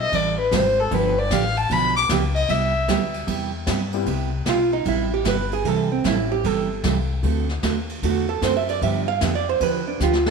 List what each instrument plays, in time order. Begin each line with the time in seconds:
Already playing: upright bass B1
0.00 fiddle D#5
0.12 upright bass A1, steel-string acoustic guitar C3 E3 G3 C4 E4 A4, fiddle D5, kick, ride
0.39 fiddle B4
0.51 upright bass G#1, steel-string acoustic guitar C3 E3 G3 C4 E4 A4, fiddle C5, kick, snare, hi-hat pedal, ride
0.79 fiddle A4
0.91 upright bass G1, steel-string acoustic guitar D3 F3 B3 D4 G4, fiddle B4, kick, ride
1.18 fiddle D5
1.30 upright bass A1, steel-string acoustic guitar D3 F3 B3 D4 G4, fiddle F5, kick, snare, hi-hat pedal, ride
1.56 fiddle A5, ride
1.70 upright bass B1, steel-string acoustic guitar D3 F3 B3 D4 G4, fiddle B5, kick, ride
1.96 fiddle D6
2.09 upright bass C#2, steel-string acoustic guitar D3 F3 B3 D4 G4, kick, snare, hi-hat pedal, ride
2.35 fiddle D#5, ride
2.49 upright bass C2, steel-string acoustic guitar C3 G3 B3 E4 G4, fiddle E5, kick, ride
2.88 upright bass D2, steel-string acoustic guitar C3 G3 B3 E4 G4, kick, snare, hi-hat pedal, ride
3.14 ride
3.27 upright bass E2, steel-string acoustic guitar C3 G3 B3 E4 G4, kick, ride
3.67 upright bass G2, steel-string acoustic guitar C3 G3 B3 E4 G4, kick, snare, hi-hat pedal, ride
3.92 upright piano G3 B3 C4 E4 G4, ride
4.06 upright bass C2, steel-string acoustic guitar C3 G3 B3 E4 G4, kick, ride
4.46 upright bass B1, steel-string acoustic guitar C3 G3 B3 E4 G4, hollow-body jazz guitar F4, kick, snare, hi-hat pedal, ride
4.73 hollow-body jazz guitar D#4
4.85 upright bass A1, steel-string acoustic guitar C3 G3 B3 E4 G4, hollow-body jazz guitar E4, kick, ride
5.14 hollow-body jazz guitar G4
5.25 upright bass G1, steel-string acoustic guitar C3 G3 B3 E4 G4, hollow-body jazz guitar B4, kick, snare, hi-hat pedal, ride
5.51 hollow-body jazz guitar G#4, ride
5.65 upright bass C2, steel-string acoustic guitar C3 E3 G3 C4 E4 A4, hollow-body jazz guitar A4, kick, ride
5.92 hollow-body jazz guitar C4
6.04 upright bass A1, steel-string acoustic guitar C3 E3 G3 C4 E4 A4, hollow-body jazz guitar E4, kick, snare, hi-hat pedal, ride
6.32 hollow-body jazz guitar G4
6.44 upright bass G1, steel-string acoustic guitar C3 E3 G3 C4 E4 A4, hollow-body jazz guitar A4, kick, ride
6.84 upright bass C2, steel-string acoustic guitar C3 E3 G3 C4 E4 A4, kick, snare, hi-hat pedal, ride
7.23 upright bass D2, steel-string acoustic guitar D3 A3 C4 F#4 A4, kick, ride
7.49 snare
7.63 upright bass D#2, steel-string acoustic guitar D3 A3 C4 F#4 A4, kick, snare, hi-hat pedal, ride
7.89 ride
8.02 upright bass E2, steel-string acoustic guitar D3 A3 C4 F#4 A4, hollow-body jazz guitar F#4, kick, ride
8.29 hollow-body jazz guitar A4
8.42 upright bass F#2, steel-string acoustic guitar D3 A3 C4 F#4 A4, hollow-body jazz guitar C5, kick, snare, hi-hat pedal, ride
8.57 hollow-body jazz guitar E5
8.68 hollow-body jazz guitar D5, ride
8.82 upright bass G2, steel-string acoustic guitar D3 F3 B3 D4 G4, hollow-body jazz guitar E5, kick, ride
9.08 hollow-body jazz guitar F5
9.21 upright bass F2, steel-string acoustic guitar D3 F3 B3 D4 G4, hollow-body jazz guitar E5, kick, snare, hi-hat pedal, ride
9.35 hollow-body jazz guitar D5
9.49 hollow-body jazz guitar C5
9.60 upright bass E2, steel-string acoustic guitar D3 F3 B3 D4 G4, hollow-body jazz guitar B4, kick, ride
9.87 hollow-body jazz guitar D4
10.00 upright bass D2, steel-string acoustic guitar D3 F3 B3 D4 G4, hollow-body jazz guitar F4, snare, hi-hat pedal
10.13 snare
10.26 snare